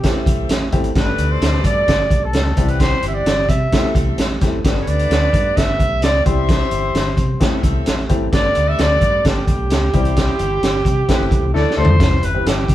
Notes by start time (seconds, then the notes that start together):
Already playing: E3 G4
0.03 A1 A3 B3 C4 E4 G4 A4 E5, kick, snare, closed hi-hat
0.09 C4
0.26 B1, kick, closed hi-hat
0.49 A1, snare, closed hi-hat
0.72 G#1 A3 C4 E4 G4, kick, closed hi-hat
0.84 closed hi-hat
0.95 G1 B2 D3 A3 B3 D4 G4 A4 B4 D5, kick, snare, closed hi-hat
1.18 D2, closed hi-hat
1.32 C5
1.41 D2, snare, closed hi-hat
1.64 G2 D5, kick, closed hi-hat
1.88 G1, kick, snare, closed hi-hat
2.11 B1, kick, closed hi-hat
2.24 A4
2.33 C#2, snare, closed hi-hat
2.56 C2 E3 G3 C4 E4 G4 F#5, kick, closed hi-hat
2.68 B4, closed hi-hat
2.80 C5, kick, snare, closed hi-hat
3.03 G1, closed hi-hat
3.08 E5
3.14 D5
3.26 G1, snare, closed hi-hat
3.49 C3 E5, kick, closed hi-hat
3.72 A1 E3 A3 C4 E4 F#4 A4 E5, kick, snare, closed hi-hat
3.78 G4
3.83 muted fingered electric bass stroke
3.95 C2, kick, closed hi-hat
4.18 A1, snare, closed hi-hat
4.41 G#1 A3 C4 E4 G4, kick, snare, closed hi-hat
4.64 G1 D3 A3 B3 D4 G4 B4 F#5, kick, snare, closed hi-hat
4.81 C#5
4.87 D2 D5, closed hi-hat
4.99 closed hi-hat
5.10 D2, snare, closed hi-hat
5.33 G2, kick, closed hi-hat
5.57 G1 E5, kick, snare, closed hi-hat
5.80 B1, kick, closed hi-hat
6.02 C#2 D5, snare, closed hi-hat
6.26 C2 E3 G3 C4 E4 G4 C5 E5, kick, closed hi-hat
6.49 kick, snare, closed hi-hat
6.71 G1, closed hi-hat
6.95 G1, snare, closed hi-hat
7.17 C3, kick, closed hi-hat
7.40 A1 A3 C4 E4 G4 A4 E5, kick, snare, closed hi-hat
7.63 C2, kick, closed hi-hat
7.86 A1, snare, closed hi-hat
8.09 G#1 A3 C4 E4 G4, kick, closed hi-hat
8.32 G1 D3 A3 B3 D4 G4 A4 D5, kick, snare, closed hi-hat
8.55 D2, closed hi-hat
8.68 E5
8.79 D2 D5, snare, closed hi-hat
9.01 G2, kick, closed hi-hat
9.25 G1 G4, kick, snare, closed hi-hat
9.47 B1, kick, closed hi-hat
9.70 C#2, snare, closed hi-hat
9.93 C2 E3 G3 C4 E4 G4 C5, kick, closed hi-hat
10.05 closed hi-hat
10.17 kick, snare, closed hi-hat
10.39 G1, closed hi-hat
10.62 G1, snare, closed hi-hat
10.85 C3, kick, closed hi-hat
11.08 A1 A3 B3 C4 E4 G4 B4, kick, snare, closed hi-hat
11.20 G1
11.31 B1, kick, closed hi-hat
11.43 C2
11.54 D2 E3 A3 D4 E4 A4 D5, snare
11.71 snare
11.77 D2 A3 D4 E4 A4 C5
11.85 G2, floor tom
11.99 C2 C3 E3 G3 B3 C4 E4 G4 B4, kick, snare, closed hi-hat
12.23 G1 B4, closed hi-hat
12.34 B3 C4 E4 G4
12.46 G1 G4, snare, closed hi-hat
12.68 C3, kick, closed hi-hat